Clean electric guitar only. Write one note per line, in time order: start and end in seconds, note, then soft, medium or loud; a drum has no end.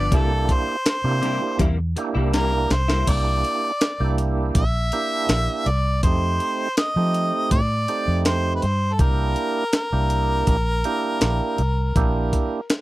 0.00 0.12 F3 soft
0.00 0.12 B3 medium
0.00 0.11 D4 soft
0.11 0.30 C3 medium
0.11 0.31 G3 medium
0.11 0.30 A#3 medium
0.11 0.29 E4 medium
0.31 muted clean electric guitar stroke soft
0.49 muted clean electric guitar stroke soft
0.86 muted clean electric guitar stroke soft
1.22 1.41 C3 medium
1.22 1.42 G3 medium
1.22 1.41 A#3 medium
1.22 1.40 E4 medium
1.41 muted clean electric guitar stroke soft
1.59 1.78 C3 medium
1.59 1.78 G3 medium
1.59 1.78 A#3 medium
1.59 1.77 E4 medium
1.78 muted clean electric guitar stroke medium
1.96 muted clean electric guitar stroke soft
2.15 2.33 G3 medium
2.15 2.34 A#3 medium
2.15 2.33 E4 medium
2.33 2.52 C3 medium
2.33 2.53 G3 medium
2.33 2.52 A#3 medium
2.33 2.51 E4 medium
2.52 muted clean electric guitar stroke medium
2.70 muted clean electric guitar stroke soft
2.88 3.09 G3 medium
2.88 3.08 A#3 medium
2.88 3.07 E4 medium